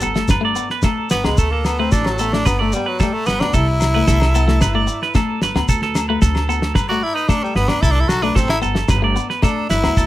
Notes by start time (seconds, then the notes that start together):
0.01 G1 B3 A4, shekere
0.15 A3, snare, shekere
0.28 G1 B4, kick, snare, low agogo, shekere
0.41 A3 D5
0.56 B3, shekere
0.70 B4, snare
0.82 A3 A4, kick, snare, low agogo, shekere
1.10 G1 B3 B4, snare, shekere
1.24 C#2 G#3 B3, snare, low agogo
1.38 D2 A3 A4, kick, shekere
1.51 A#3 A4
1.65 B3, snare, low agogo, shekere
1.79 A3 C4 B4
1.92 A1 D4 A4, kick, snare, shekere
2.05 F#3, snare, low agogo
2.18 A3 B3 A4, shekere
2.33 A3 D4, snare
2.45 G1 B3 B4, kick, snare, low agogo, shekere
2.59 A3 D5
2.72 G3, shekere
2.77 B3
2.86 F#3 B4
3.00 G3 A3 A4, kick, snare, low agogo, shekere
3.14 A3
3.26 G1 B3 B4, snare, shekere
3.40 D2 B3 D4, snare, low agogo
3.53 C2 E4 A4, kick, shekere
3.80 snare, low agogo, shekere
3.94 A3 B4
4.07 C2 A4, kick, snare, shekere
4.20 snare, low agogo
4.35 B3 A4, shekere
4.48 A3, snare
4.61 G1 B4, kick, snare, low agogo, shekere
4.75 A3 D5
4.87 muted clean electric guitar stroke, shekere
5.02 B4, snare
5.15 A3 A4, kick, snare, low agogo, shekere
5.41 G1 B4, snare, shekere
5.55 D2 B3, snare, low agogo
5.68 D2 A4, kick, shekere
5.82 A4, snare
5.95 snare, low agogo, shekere
6.09 A3 B4
6.22 D2 A4, kick, snare, shekere
6.35 snare, low agogo
6.49 B3 A4, shekere
6.62 snare
6.75 G1 B4, kick, snare, low agogo, shekere
6.89 A3 F#4 D5, shekere
7.03 E4
7.15 D#4 B4, shekere
7.28 A3 D4 A4, kick, snare, low agogo, shekere
7.43 G3, shekere
7.55 G1 B3 B4, snare
7.68 D2 B3 D4, snare, low agogo, shekere
7.82 C2 E4 A4, kick, shekere
7.92 D4 A4
8.01 E4
8.08 B1 F#4, snare, low agogo, shekere
8.22 A3 D4 B4, shekere
8.35 A1 C4 A4, kick, snare, shekere
8.49 E4, snare, low agogo, shekere
8.62 G1 B3 A4, shekere
8.75 muted clean electric guitar stroke, snare, shekere
8.88 G1 B4, kick, snare, low agogo, shekere
9.02 A3 D5
9.16 B3, shekere
9.30 B4, snare
9.42 A3 D4 A4, kick, snare, low agogo, shekere
9.70 G1 E4 B4, snare, shekere
9.83 D2 B3, snare, low agogo
9.97 D2 A4, kick, shekere